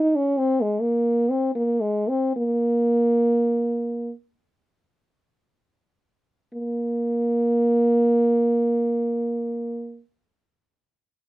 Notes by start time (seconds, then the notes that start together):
Already playing: D#4
0.15 C#4
0.38 C4
0.61 G#3
0.81 A#3
1.30 C4
1.55 A#3
1.81 G#3
2.08 C4
2.36 A#3
6.53 A#3